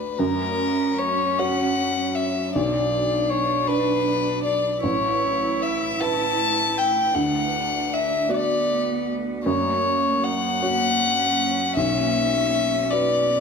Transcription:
0.00 0.15 D2 soft
0.00 0.19 A3 medium
0.00 0.15 F#4 soft
0.00 0.18 F#4 medium
0.00 0.20 B4 medium
0.00 0.15 D5 soft
0.00 0.19 D5 medium
0.17 2.50 F#2 medium
0.17 4.80 F#3 medium
0.17 2.49 C#4 medium
0.17 4.80 F#4 medium
0.17 1.00 A#4 medium
0.17 2.51 C#5 medium
0.98 1.41 C#5 medium
1.39 2.51 F#4 soft
1.39 2.51 C#5 medium
1.39 2.17 F#5 medium
2.16 2.54 E5 medium
2.54 4.80 B1 medium
2.54 4.79 D4 medium
2.54 7.17 B4 medium
2.54 3.31 D5 medium
3.30 3.69 C#5 medium
3.67 4.80 D4 medium
3.67 4.43 B4 medium
3.67 4.80 B4 medium
4.44 4.82 D5 medium
4.83 7.12 A1 medium
4.83 9.46 A3 medium
4.83 7.12 E4 medium
4.83 7.17 E4 medium
4.83 5.64 C#5 medium
5.62 6.02 E5 medium
6.01 7.12 E4 soft
6.01 7.12 B4 medium
6.01 6.79 A5 loud
6.78 7.17 G5 medium
7.15 9.40 D2 medium
7.15 8.31 D4 medium
7.15 11.74 F#4 medium
7.15 9.46 D5 medium
7.15 7.95 F#5 medium
7.94 8.32 E5 medium
8.29 9.45 B3 medium
8.29 9.41 F#4 medium
8.29 9.41 D5 medium
8.29 9.07 D5 medium
9.43 11.73 F#2 medium
9.43 10.64 A#3 medium
9.43 11.77 A#3 medium
9.43 10.25 C#5 medium
9.43 11.76 C#5 medium
10.23 11.76 F#5 loud
10.62 13.40 C#4 medium
10.62 11.72 F#4 medium
10.62 11.72 C#5 medium
11.75 13.40 B1 medium
11.75 13.40 B3 medium
11.75 13.40 F#4 medium
11.75 13.40 B4 medium
11.75 12.92 E5 loud
12.91 13.40 F#4 soft
12.91 13.40 B4 medium
12.91 13.40 D5 medium

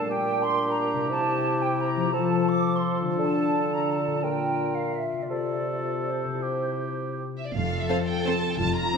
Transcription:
0.00 1.04 A#2 soft
0.00 1.11 A#2 medium
0.00 2.09 G3 soft
0.00 1.06 A#3 soft
0.00 1.08 D4 soft
0.04 1.05 G4 soft
0.09 1.13 D4 medium
0.09 2.11 G4 soft
0.09 0.43 G5 medium
0.43 0.70 C6 medium
0.70 1.12 A#5 medium
0.93 2.07 C3 soft
0.97 2.00 C4 soft
1.02 2.11 E4 soft
1.06 2.16 C3 medium
1.06 2.13 G4 soft
1.06 1.61 A5 medium
1.11 2.13 E4 soft
1.62 1.80 G5 medium
1.80 2.14 A#5 medium
1.96 5.23 F3 soft
2.01 3.14 C4 soft
2.05 3.09 F4 soft
2.10 4.19 F4 soft
2.10 3.13 A4 soft
2.10 4.19 A4 soft
2.10 2.49 A5 medium
2.14 3.18 F3 medium
2.49 2.76 D6 medium
2.76 3.00 C6 medium
3.01 4.16 D3 soft
3.06 4.09 D4 soft
3.10 4.14 F4 soft
3.15 4.23 A4 soft
3.19 4.26 D3 medium
3.19 3.72 A5 medium
3.73 3.91 A#5 medium
3.91 4.24 A5 medium
4.06 5.23 A#2 soft
4.11 5.26 D4 soft
4.15 5.21 F4 soft
4.20 5.30 A#4 soft
4.24 5.02 A#2 soft
4.24 6.10 F4 soft
4.24 5.00 A#4 soft
4.24 4.77 G5 medium
4.76 4.95 F5 medium
4.94 5.21 E5 soft
5.13 6.24 C3 soft
5.17 6.28 C4 soft
5.22 6.40 F4 soft
5.22 5.29 D5 soft
5.26 7.34 C3 soft
5.26 6.42 A4 soft
5.26 6.44 A4 soft
5.26 6.05 D5 medium
6.08 7.19 C5 soft
6.25 7.48 C3 soft
6.29 7.71 C4 soft
6.33 7.52 E4 soft
6.38 7.54 G4 soft
6.42 7.33 E4 soft
6.42 7.38 G4 soft
7.36 7.45 E5 soft
7.47 7.55 D5 soft
7.54 7.83 F1 medium
7.54 8.59 F2 soft
7.54 8.56 A4 medium
7.54 7.80 F5 medium
7.72 8.76 C4 soft
7.82 7.90 E5 medium
7.89 7.97 C4 soft
7.89 7.97 A4 soft
7.89 8.43 A4 soft
7.89 7.98 C5 soft
7.89 7.96 F5 medium
8.07 8.97 F5 soft
8.07 8.25 G5 medium
8.25 8.34 C4 soft
8.25 8.35 A4 soft
8.25 8.97 C5 soft
8.25 8.35 C5 soft
8.25 8.52 A5 medium
8.44 8.94 A4 soft
8.53 8.60 G5 medium
8.59 8.87 F1 medium
8.59 8.97 F2 soft
8.59 8.94 F4 soft
8.59 8.76 A5 medium
8.76 8.97 C4 soft
8.76 8.97 A#5 medium
8.94 8.97 D4 soft

